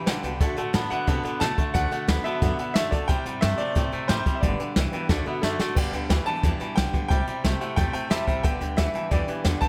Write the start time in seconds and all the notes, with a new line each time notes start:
Already playing: G5
0.06 B1 G2 D3 G3 B3 D4 G4 B4 D5 G5, snare, closed hi-hat
0.23 C2 G2 D3 G3 B3 D4 G4 B4 D5 G5, closed hi-hat
0.40 D2 D3 A3 D4 F#4 A4 D5 F#5, kick, closed hi-hat
0.57 A2 D3 A3 D4 F#4 A4 D5 F#5, closed hi-hat
0.73 A2 D3 A3 B3 D4 F#4 A4 D5 A5, snare, closed hi-hat
0.90 D3 B3 D4 F#4 A4 D5 E5 F#5, muted upright bass stroke, closed hi-hat
1.07 C3 D3 A3 B3 D4 F#4 A4 D5 A5, kick, closed hi-hat
1.24 D3 B3 D4 F#4 A4 D5 F#5, muted upright bass stroke, closed hi-hat
1.40 B2 D3 A3 D4 F#4 A4 D5 F#5 A5, snare, closed hi-hat
1.58 D3 A3 D4 F#4 A4 D5 E5, kick, closed hi-hat
1.74 D2 D3 A3 D4 F#4 A4 D5 F#5, kick, closed hi-hat
1.91 D3 A3 D4 F#4 A4 D5 F#5, muted upright bass stroke, closed hi-hat
2.08 D2 D3 A3 B3 D4 F#4 A4 D5 F#5, snare, closed hi-hat
2.24 D3 B3 D4 F#4 A4 D5 E5 A5, closed hi-hat
2.42 F#2 D3 A3 B3 D4 F#4 A4 D5 F#5, kick, closed hi-hat
2.58 D3 B3 D4 F#4 A4 D5 F#5, muted upright bass stroke, closed hi-hat
2.74 F#2 D3 A3 D4 F#4 A4 D5 E5, snare, closed hi-hat
2.91 B1 D3 A3 D4 F#4 A4 D5 A5, kick, closed hi-hat
3.08 C2 C3 G3 C4 E4 C5 E5 G5, kick, closed hi-hat
3.25 G2 C3 G3 C4 E4 C5 E5 F#5, closed hi-hat
3.41 G2 C3 G3 A3 C4 E4 C5 E5 G5, snare, closed hi-hat
3.58 C3 A3 C4 E4 C5 D5 E5 G5, closed hi-hat
3.75 A2 C3 G3 A3 C4 E4 C5 E5 G5, kick, closed hi-hat
3.92 C3 A3 C4 E4 C5 E5 G5, muted upright bass stroke, closed hi-hat
4.08 A2 C3 G3 C4 E4 C5 E5 G5, snare, closed hi-hat
4.26 C3 G3 C4 E4 C5 E5 G5, muted upright bass stroke, kick, closed hi-hat
4.35 E5
4.41 G1 G2 D3 G3 B3 B4 D5 G5, kick, closed hi-hat
4.45 D4 B4
4.60 G2 D3 G3 B3 D4 B4 D5 G5, closed hi-hat
4.76 C2 G2 E3 G3 B3 D4 B4 D5 G5, snare, closed hi-hat
4.92 G2 E3 B3 D4 B4 D5 G5, muted upright bass stroke, closed hi-hat
4.96 G3
5.09 D2 D3 A3 D4 F#4 A4 D5 F#5, kick, snare
5.25 D3 B3 D4 F#4 A4 D5 E5, muted upright bass stroke
5.42 F#2 D3 A3 D4 F#4 A4 D5 E5, snare
5.46 A4
5.59 D3 A3 F#4 A4 D5 F#5, snare
5.63 D4
5.75 G1 G2 D3 G3 B3 D4 G4 B4 D5 G5, kick, crash
5.92 D2 G2 D3 G3 B3 D4 G4 B4 D5 G5, closed hi-hat
6.09 D2 G2 E3 G3 B3 D4 G4 B4 D5 G5, snare, closed hi-hat
6.26 G2 E3 G3 B3 D4 G4 B4 D5 G5 A5, muted upright bass stroke, closed hi-hat
6.43 E2 G2 D3 E3 G3 B3 D4 G4 B4 D5 G5, kick, closed hi-hat
6.60 G2 E3 G3 B3 D4 G4 B4 D5 G5, muted upright bass stroke, closed hi-hat
6.76 B1 G2 D3 G3 B3 D4 G4 B4 D5 G5, snare, closed hi-hat
6.93 G2 D3 G3 B3 D4 G4 B4 D5 G5, kick, closed hi-hat
7.08 C2 C3 G3 C4 E4 G4 C5 E5 G5, kick, closed hi-hat
7.27 C3 G3 C4 E4 G4 C5 E5 G5, closed hi-hat
7.43 C2 C3 G3 A3 C4 E4 G4 C5 E5 G5, snare, closed hi-hat
7.60 C3 A3 C4 E4 G4 C5 E5 F#5, closed hi-hat
7.76 E2 C3 G3 A3 C4 E4 G4 C5 E5 G5, kick, closed hi-hat
7.93 C3 A3 C4 E4 G4 C5 E5 G5 A5, muted upright bass stroke, closed hi-hat
8.10 E2 C3 G3 C4 E4 G4 C5 E5 A5, snare, closed hi-hat
8.27 A1 C3 G3 C4 E4 G4 C5 E5 G5, kick, closed hi-hat
8.43 G1 G2 D3 G3 B3 D4 G4 B4 D5 G5, kick, closed hi-hat
8.60 D2 G2 D3 G3 B3 D4 G4 B4 D5 G5, closed hi-hat
8.77 D2 G2 E3 G3 B3 D4 G4 B4 D5 E5 F#5, snare, closed hi-hat
8.94 G2 E3 G3 B3 D4 G4 B4 D5 A5, muted upright bass stroke, closed hi-hat
9.11 E2 G2 D3 E3 G3 B3 D4 G4 B4 D5 G5, kick, closed hi-hat
9.27 G2 E3 G3 B3 D4 G4 B4 D5 G5, muted upright bass stroke, closed hi-hat
9.44 E2 G2 D3 G3 B3 D4 G4 B4 D5 G5, snare, closed hi-hat
9.60 G2 D3 G3 B3 D4 G4 B4 D5 G5 A5, kick, closed hi-hat